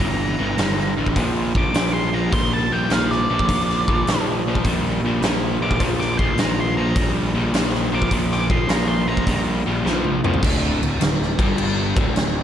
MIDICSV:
0, 0, Header, 1, 5, 480
1, 0, Start_track
1, 0, Tempo, 578592
1, 966, Time_signature, 4, 2, 24, 8
1, 10314, End_track
2, 0, Start_track
2, 0, Title_t, "Lead electric guitar"
2, 0, Program_c, 0, 29
2, 0, Note_on_c, 0, 82, 97
2, 775, Note_off_c, 0, 82, 0
2, 1307, Note_on_c, 0, 86, 98
2, 1604, Note_off_c, 0, 86, 0
2, 1607, Note_on_c, 0, 84, 85
2, 1778, Note_off_c, 0, 84, 0
2, 1778, Note_on_c, 0, 82, 91
2, 1932, Note_off_c, 0, 82, 0
2, 1932, Note_on_c, 0, 84, 89
2, 2088, Note_off_c, 0, 84, 0
2, 2103, Note_on_c, 0, 81, 89
2, 2254, Note_off_c, 0, 81, 0
2, 2260, Note_on_c, 0, 79, 94
2, 2426, Note_off_c, 0, 79, 0
2, 2426, Note_on_c, 0, 77, 95
2, 2580, Note_off_c, 0, 77, 0
2, 2580, Note_on_c, 0, 74, 97
2, 3512, Note_off_c, 0, 74, 0
2, 4666, Note_on_c, 0, 86, 91
2, 4818, Note_off_c, 0, 86, 0
2, 4978, Note_on_c, 0, 86, 87
2, 5127, Note_off_c, 0, 86, 0
2, 5131, Note_on_c, 0, 84, 100
2, 5305, Note_off_c, 0, 84, 0
2, 5305, Note_on_c, 0, 82, 101
2, 5458, Note_off_c, 0, 82, 0
2, 5477, Note_on_c, 0, 84, 81
2, 5615, Note_off_c, 0, 84, 0
2, 5618, Note_on_c, 0, 82, 93
2, 5878, Note_off_c, 0, 82, 0
2, 6592, Note_on_c, 0, 86, 87
2, 6740, Note_off_c, 0, 86, 0
2, 6911, Note_on_c, 0, 86, 93
2, 7060, Note_off_c, 0, 86, 0
2, 7060, Note_on_c, 0, 84, 92
2, 7222, Note_off_c, 0, 84, 0
2, 7222, Note_on_c, 0, 82, 106
2, 7363, Note_off_c, 0, 82, 0
2, 7363, Note_on_c, 0, 84, 78
2, 7524, Note_off_c, 0, 84, 0
2, 7534, Note_on_c, 0, 82, 88
2, 7793, Note_off_c, 0, 82, 0
2, 10314, End_track
3, 0, Start_track
3, 0, Title_t, "Distorted electric guitar"
3, 0, Program_c, 1, 30
3, 0, Note_on_c, 1, 43, 72
3, 0, Note_on_c, 1, 52, 98
3, 290, Note_off_c, 1, 43, 0
3, 292, Note_off_c, 1, 52, 0
3, 319, Note_on_c, 1, 43, 76
3, 323, Note_on_c, 1, 52, 82
3, 465, Note_off_c, 1, 43, 0
3, 467, Note_off_c, 1, 52, 0
3, 479, Note_on_c, 1, 43, 72
3, 484, Note_on_c, 1, 50, 86
3, 773, Note_off_c, 1, 43, 0
3, 776, Note_off_c, 1, 50, 0
3, 802, Note_on_c, 1, 43, 70
3, 811, Note_on_c, 1, 50, 73
3, 948, Note_off_c, 1, 43, 0
3, 952, Note_off_c, 1, 50, 0
3, 966, Note_on_c, 1, 46, 81
3, 970, Note_on_c, 1, 53, 92
3, 1258, Note_off_c, 1, 46, 0
3, 1260, Note_off_c, 1, 53, 0
3, 1290, Note_on_c, 1, 46, 70
3, 1297, Note_on_c, 1, 53, 76
3, 1433, Note_off_c, 1, 46, 0
3, 1437, Note_off_c, 1, 53, 0
3, 1445, Note_on_c, 1, 46, 80
3, 1447, Note_on_c, 1, 53, 93
3, 1739, Note_off_c, 1, 46, 0
3, 1740, Note_off_c, 1, 53, 0
3, 1768, Note_on_c, 1, 46, 80
3, 1772, Note_on_c, 1, 53, 75
3, 1905, Note_off_c, 1, 46, 0
3, 1915, Note_on_c, 1, 46, 82
3, 1916, Note_off_c, 1, 53, 0
3, 1920, Note_on_c, 1, 55, 93
3, 2215, Note_off_c, 1, 46, 0
3, 2218, Note_off_c, 1, 55, 0
3, 2250, Note_on_c, 1, 46, 69
3, 2257, Note_on_c, 1, 55, 70
3, 2395, Note_off_c, 1, 46, 0
3, 2399, Note_off_c, 1, 55, 0
3, 2404, Note_on_c, 1, 46, 82
3, 2409, Note_on_c, 1, 53, 92
3, 2700, Note_off_c, 1, 46, 0
3, 2703, Note_off_c, 1, 53, 0
3, 2734, Note_on_c, 1, 46, 70
3, 2740, Note_on_c, 1, 53, 87
3, 2878, Note_off_c, 1, 46, 0
3, 2881, Note_off_c, 1, 53, 0
3, 2892, Note_on_c, 1, 46, 82
3, 2899, Note_on_c, 1, 53, 91
3, 3185, Note_off_c, 1, 46, 0
3, 3189, Note_off_c, 1, 53, 0
3, 3224, Note_on_c, 1, 46, 72
3, 3225, Note_on_c, 1, 53, 79
3, 3364, Note_off_c, 1, 46, 0
3, 3365, Note_off_c, 1, 53, 0
3, 3381, Note_on_c, 1, 46, 75
3, 3386, Note_on_c, 1, 53, 76
3, 3670, Note_off_c, 1, 46, 0
3, 3673, Note_off_c, 1, 53, 0
3, 3710, Note_on_c, 1, 46, 70
3, 3711, Note_on_c, 1, 53, 86
3, 3848, Note_off_c, 1, 46, 0
3, 3848, Note_off_c, 1, 53, 0
3, 3866, Note_on_c, 1, 46, 76
3, 3866, Note_on_c, 1, 55, 91
3, 4153, Note_off_c, 1, 46, 0
3, 4153, Note_off_c, 1, 55, 0
3, 4189, Note_on_c, 1, 46, 66
3, 4194, Note_on_c, 1, 55, 78
3, 4327, Note_off_c, 1, 46, 0
3, 4330, Note_off_c, 1, 55, 0
3, 4345, Note_on_c, 1, 46, 82
3, 4350, Note_on_c, 1, 53, 93
3, 4632, Note_off_c, 1, 46, 0
3, 4635, Note_off_c, 1, 53, 0
3, 4658, Note_on_c, 1, 46, 73
3, 4663, Note_on_c, 1, 53, 82
3, 4802, Note_off_c, 1, 46, 0
3, 4805, Note_off_c, 1, 53, 0
3, 4814, Note_on_c, 1, 46, 81
3, 4820, Note_on_c, 1, 53, 93
3, 5107, Note_off_c, 1, 46, 0
3, 5110, Note_off_c, 1, 53, 0
3, 5142, Note_on_c, 1, 46, 75
3, 5146, Note_on_c, 1, 53, 87
3, 5284, Note_off_c, 1, 46, 0
3, 5286, Note_off_c, 1, 53, 0
3, 5299, Note_on_c, 1, 46, 75
3, 5306, Note_on_c, 1, 53, 86
3, 5590, Note_off_c, 1, 46, 0
3, 5593, Note_off_c, 1, 53, 0
3, 5619, Note_on_c, 1, 46, 79
3, 5622, Note_on_c, 1, 53, 92
3, 5762, Note_off_c, 1, 46, 0
3, 5764, Note_off_c, 1, 53, 0
3, 5772, Note_on_c, 1, 46, 85
3, 5780, Note_on_c, 1, 55, 102
3, 6066, Note_off_c, 1, 46, 0
3, 6070, Note_off_c, 1, 55, 0
3, 6091, Note_on_c, 1, 46, 74
3, 6095, Note_on_c, 1, 55, 83
3, 6238, Note_off_c, 1, 46, 0
3, 6240, Note_off_c, 1, 55, 0
3, 6250, Note_on_c, 1, 46, 82
3, 6254, Note_on_c, 1, 53, 88
3, 6544, Note_off_c, 1, 46, 0
3, 6546, Note_off_c, 1, 53, 0
3, 6566, Note_on_c, 1, 46, 70
3, 6572, Note_on_c, 1, 53, 88
3, 6715, Note_off_c, 1, 46, 0
3, 6718, Note_off_c, 1, 53, 0
3, 6734, Note_on_c, 1, 46, 80
3, 6738, Note_on_c, 1, 53, 83
3, 7025, Note_off_c, 1, 46, 0
3, 7027, Note_off_c, 1, 53, 0
3, 7057, Note_on_c, 1, 46, 72
3, 7061, Note_on_c, 1, 53, 85
3, 7193, Note_off_c, 1, 46, 0
3, 7196, Note_off_c, 1, 53, 0
3, 7203, Note_on_c, 1, 46, 80
3, 7206, Note_on_c, 1, 53, 91
3, 7499, Note_off_c, 1, 46, 0
3, 7501, Note_off_c, 1, 53, 0
3, 7528, Note_on_c, 1, 46, 88
3, 7531, Note_on_c, 1, 53, 84
3, 7674, Note_off_c, 1, 46, 0
3, 7676, Note_off_c, 1, 53, 0
3, 7690, Note_on_c, 1, 46, 89
3, 7691, Note_on_c, 1, 55, 98
3, 7982, Note_off_c, 1, 46, 0
3, 7982, Note_off_c, 1, 55, 0
3, 8014, Note_on_c, 1, 46, 73
3, 8016, Note_on_c, 1, 55, 77
3, 8154, Note_off_c, 1, 46, 0
3, 8157, Note_off_c, 1, 55, 0
3, 8164, Note_on_c, 1, 46, 86
3, 8170, Note_on_c, 1, 53, 97
3, 8457, Note_off_c, 1, 46, 0
3, 8461, Note_off_c, 1, 53, 0
3, 8495, Note_on_c, 1, 46, 74
3, 8500, Note_on_c, 1, 53, 82
3, 8635, Note_off_c, 1, 46, 0
3, 8638, Note_off_c, 1, 53, 0
3, 8651, Note_on_c, 1, 38, 87
3, 8654, Note_on_c, 1, 50, 100
3, 8959, Note_off_c, 1, 38, 0
3, 8963, Note_off_c, 1, 50, 0
3, 8969, Note_on_c, 1, 38, 72
3, 9095, Note_off_c, 1, 38, 0
3, 9126, Note_on_c, 1, 38, 75
3, 9383, Note_off_c, 1, 38, 0
3, 9449, Note_on_c, 1, 43, 90
3, 9455, Note_on_c, 1, 55, 97
3, 9916, Note_off_c, 1, 43, 0
3, 9919, Note_off_c, 1, 55, 0
3, 9923, Note_on_c, 1, 38, 97
3, 9926, Note_on_c, 1, 50, 91
3, 10076, Note_off_c, 1, 38, 0
3, 10078, Note_off_c, 1, 50, 0
3, 10086, Note_on_c, 1, 38, 65
3, 10314, Note_off_c, 1, 38, 0
3, 10314, End_track
4, 0, Start_track
4, 0, Title_t, "Picked electric bass"
4, 0, Program_c, 2, 34
4, 0, Note_on_c, 2, 31, 84
4, 295, Note_off_c, 2, 31, 0
4, 330, Note_on_c, 2, 31, 78
4, 472, Note_off_c, 2, 31, 0
4, 486, Note_on_c, 2, 31, 87
4, 781, Note_off_c, 2, 31, 0
4, 809, Note_on_c, 2, 33, 87
4, 953, Note_off_c, 2, 33, 0
4, 964, Note_on_c, 2, 34, 97
4, 1260, Note_off_c, 2, 34, 0
4, 1285, Note_on_c, 2, 34, 89
4, 1428, Note_off_c, 2, 34, 0
4, 1433, Note_on_c, 2, 34, 87
4, 1891, Note_off_c, 2, 34, 0
4, 1930, Note_on_c, 2, 34, 88
4, 2226, Note_off_c, 2, 34, 0
4, 2248, Note_on_c, 2, 34, 86
4, 2393, Note_off_c, 2, 34, 0
4, 2398, Note_on_c, 2, 34, 88
4, 2700, Note_off_c, 2, 34, 0
4, 2731, Note_on_c, 2, 34, 89
4, 2878, Note_off_c, 2, 34, 0
4, 2897, Note_on_c, 2, 34, 97
4, 3191, Note_off_c, 2, 34, 0
4, 3223, Note_on_c, 2, 34, 95
4, 3352, Note_off_c, 2, 34, 0
4, 3357, Note_on_c, 2, 34, 83
4, 3815, Note_off_c, 2, 34, 0
4, 3856, Note_on_c, 2, 34, 92
4, 4151, Note_off_c, 2, 34, 0
4, 4162, Note_on_c, 2, 34, 88
4, 4315, Note_off_c, 2, 34, 0
4, 4322, Note_on_c, 2, 34, 97
4, 4624, Note_off_c, 2, 34, 0
4, 4640, Note_on_c, 2, 34, 84
4, 4794, Note_off_c, 2, 34, 0
4, 4814, Note_on_c, 2, 34, 95
4, 5111, Note_off_c, 2, 34, 0
4, 5140, Note_on_c, 2, 34, 89
4, 5273, Note_off_c, 2, 34, 0
4, 5278, Note_on_c, 2, 34, 83
4, 5736, Note_off_c, 2, 34, 0
4, 5772, Note_on_c, 2, 34, 89
4, 6069, Note_off_c, 2, 34, 0
4, 6087, Note_on_c, 2, 34, 83
4, 6237, Note_off_c, 2, 34, 0
4, 6244, Note_on_c, 2, 34, 88
4, 6544, Note_off_c, 2, 34, 0
4, 6572, Note_on_c, 2, 34, 88
4, 6719, Note_off_c, 2, 34, 0
4, 6729, Note_on_c, 2, 34, 96
4, 7026, Note_off_c, 2, 34, 0
4, 7049, Note_on_c, 2, 34, 89
4, 7197, Note_off_c, 2, 34, 0
4, 7203, Note_on_c, 2, 34, 86
4, 7655, Note_off_c, 2, 34, 0
4, 7688, Note_on_c, 2, 34, 86
4, 7984, Note_off_c, 2, 34, 0
4, 8021, Note_on_c, 2, 34, 82
4, 8162, Note_off_c, 2, 34, 0
4, 8175, Note_on_c, 2, 34, 90
4, 8466, Note_off_c, 2, 34, 0
4, 8498, Note_on_c, 2, 36, 92
4, 8639, Note_off_c, 2, 36, 0
4, 8650, Note_on_c, 2, 26, 94
4, 8948, Note_off_c, 2, 26, 0
4, 8974, Note_on_c, 2, 26, 86
4, 9118, Note_off_c, 2, 26, 0
4, 9127, Note_on_c, 2, 26, 75
4, 9426, Note_off_c, 2, 26, 0
4, 9449, Note_on_c, 2, 31, 90
4, 9893, Note_off_c, 2, 31, 0
4, 9927, Note_on_c, 2, 26, 86
4, 10072, Note_off_c, 2, 26, 0
4, 10082, Note_on_c, 2, 26, 84
4, 10314, Note_off_c, 2, 26, 0
4, 10314, End_track
5, 0, Start_track
5, 0, Title_t, "Drums"
5, 0, Note_on_c, 9, 36, 89
5, 2, Note_on_c, 9, 46, 54
5, 82, Note_off_c, 9, 36, 0
5, 85, Note_off_c, 9, 46, 0
5, 479, Note_on_c, 9, 46, 50
5, 492, Note_on_c, 9, 38, 105
5, 562, Note_off_c, 9, 46, 0
5, 575, Note_off_c, 9, 38, 0
5, 662, Note_on_c, 9, 38, 29
5, 745, Note_off_c, 9, 38, 0
5, 883, Note_on_c, 9, 36, 71
5, 963, Note_off_c, 9, 36, 0
5, 963, Note_on_c, 9, 36, 96
5, 964, Note_on_c, 9, 46, 56
5, 1046, Note_off_c, 9, 36, 0
5, 1047, Note_off_c, 9, 46, 0
5, 1286, Note_on_c, 9, 36, 87
5, 1369, Note_off_c, 9, 36, 0
5, 1445, Note_on_c, 9, 46, 64
5, 1458, Note_on_c, 9, 38, 113
5, 1528, Note_off_c, 9, 46, 0
5, 1541, Note_off_c, 9, 38, 0
5, 1929, Note_on_c, 9, 36, 118
5, 1935, Note_on_c, 9, 46, 60
5, 2012, Note_off_c, 9, 36, 0
5, 2018, Note_off_c, 9, 46, 0
5, 2405, Note_on_c, 9, 46, 52
5, 2418, Note_on_c, 9, 38, 109
5, 2488, Note_off_c, 9, 46, 0
5, 2501, Note_off_c, 9, 38, 0
5, 2585, Note_on_c, 9, 38, 31
5, 2668, Note_off_c, 9, 38, 0
5, 2815, Note_on_c, 9, 36, 78
5, 2894, Note_off_c, 9, 36, 0
5, 2894, Note_on_c, 9, 36, 90
5, 2896, Note_on_c, 9, 46, 57
5, 2977, Note_off_c, 9, 36, 0
5, 2979, Note_off_c, 9, 46, 0
5, 3069, Note_on_c, 9, 38, 30
5, 3152, Note_off_c, 9, 38, 0
5, 3219, Note_on_c, 9, 36, 90
5, 3302, Note_off_c, 9, 36, 0
5, 3378, Note_on_c, 9, 46, 57
5, 3390, Note_on_c, 9, 38, 105
5, 3461, Note_off_c, 9, 46, 0
5, 3473, Note_off_c, 9, 38, 0
5, 3777, Note_on_c, 9, 36, 70
5, 3855, Note_off_c, 9, 36, 0
5, 3855, Note_on_c, 9, 36, 96
5, 3855, Note_on_c, 9, 46, 55
5, 3938, Note_off_c, 9, 36, 0
5, 3938, Note_off_c, 9, 46, 0
5, 4333, Note_on_c, 9, 46, 50
5, 4345, Note_on_c, 9, 38, 102
5, 4416, Note_off_c, 9, 46, 0
5, 4428, Note_off_c, 9, 38, 0
5, 4735, Note_on_c, 9, 36, 82
5, 4812, Note_on_c, 9, 46, 56
5, 4813, Note_off_c, 9, 36, 0
5, 4813, Note_on_c, 9, 36, 98
5, 4895, Note_off_c, 9, 46, 0
5, 4896, Note_off_c, 9, 36, 0
5, 4985, Note_on_c, 9, 38, 32
5, 5068, Note_off_c, 9, 38, 0
5, 5136, Note_on_c, 9, 36, 88
5, 5219, Note_off_c, 9, 36, 0
5, 5288, Note_on_c, 9, 46, 57
5, 5301, Note_on_c, 9, 38, 114
5, 5371, Note_off_c, 9, 46, 0
5, 5384, Note_off_c, 9, 38, 0
5, 5773, Note_on_c, 9, 36, 117
5, 5773, Note_on_c, 9, 46, 61
5, 5856, Note_off_c, 9, 36, 0
5, 5856, Note_off_c, 9, 46, 0
5, 6252, Note_on_c, 9, 46, 58
5, 6264, Note_on_c, 9, 38, 105
5, 6334, Note_off_c, 9, 46, 0
5, 6347, Note_off_c, 9, 38, 0
5, 6424, Note_on_c, 9, 38, 34
5, 6507, Note_off_c, 9, 38, 0
5, 6651, Note_on_c, 9, 36, 81
5, 6728, Note_on_c, 9, 46, 59
5, 6729, Note_off_c, 9, 36, 0
5, 6729, Note_on_c, 9, 36, 94
5, 6811, Note_off_c, 9, 46, 0
5, 6812, Note_off_c, 9, 36, 0
5, 6900, Note_on_c, 9, 38, 34
5, 6983, Note_off_c, 9, 38, 0
5, 7050, Note_on_c, 9, 36, 89
5, 7133, Note_off_c, 9, 36, 0
5, 7207, Note_on_c, 9, 46, 61
5, 7219, Note_on_c, 9, 38, 118
5, 7290, Note_off_c, 9, 46, 0
5, 7302, Note_off_c, 9, 38, 0
5, 7609, Note_on_c, 9, 36, 76
5, 7690, Note_off_c, 9, 36, 0
5, 7690, Note_on_c, 9, 36, 91
5, 7694, Note_on_c, 9, 46, 60
5, 7773, Note_off_c, 9, 36, 0
5, 7777, Note_off_c, 9, 46, 0
5, 8181, Note_on_c, 9, 38, 54
5, 8264, Note_off_c, 9, 38, 0
5, 8332, Note_on_c, 9, 48, 65
5, 8415, Note_off_c, 9, 48, 0
5, 8498, Note_on_c, 9, 45, 96
5, 8575, Note_on_c, 9, 43, 81
5, 8581, Note_off_c, 9, 45, 0
5, 8651, Note_on_c, 9, 36, 105
5, 8658, Note_off_c, 9, 43, 0
5, 8662, Note_on_c, 9, 49, 121
5, 8662, Note_on_c, 9, 57, 79
5, 8734, Note_off_c, 9, 36, 0
5, 8745, Note_off_c, 9, 49, 0
5, 8745, Note_off_c, 9, 57, 0
5, 8982, Note_on_c, 9, 57, 63
5, 9065, Note_off_c, 9, 57, 0
5, 9132, Note_on_c, 9, 57, 87
5, 9144, Note_on_c, 9, 38, 113
5, 9215, Note_off_c, 9, 57, 0
5, 9227, Note_off_c, 9, 38, 0
5, 9312, Note_on_c, 9, 38, 34
5, 9395, Note_off_c, 9, 38, 0
5, 9448, Note_on_c, 9, 36, 104
5, 9452, Note_on_c, 9, 57, 67
5, 9531, Note_off_c, 9, 36, 0
5, 9535, Note_off_c, 9, 57, 0
5, 9607, Note_on_c, 9, 57, 90
5, 9690, Note_off_c, 9, 57, 0
5, 9927, Note_on_c, 9, 36, 115
5, 9932, Note_on_c, 9, 57, 66
5, 10010, Note_off_c, 9, 36, 0
5, 10015, Note_off_c, 9, 57, 0
5, 10087, Note_on_c, 9, 57, 82
5, 10099, Note_on_c, 9, 38, 107
5, 10170, Note_off_c, 9, 57, 0
5, 10182, Note_off_c, 9, 38, 0
5, 10314, End_track
0, 0, End_of_file